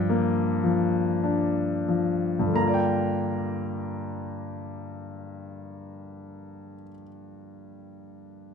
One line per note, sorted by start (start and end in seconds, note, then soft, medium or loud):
0.00 2.38 G2 medium
0.00 0.62 F3 medium
0.00 1.19 G5 medium
0.09 2.52 A#3 medium
0.64 1.87 F3 medium
1.24 2.52 D4 soft
1.88 2.54 F3 soft
2.39 6.73 G2 soft
2.47 6.81 D3 soft
2.54 6.88 A#3 soft
2.54 6.90 A#5 medium
2.60 6.94 F4 soft
2.67 7.01 D5 soft
2.74 7.08 G5 medium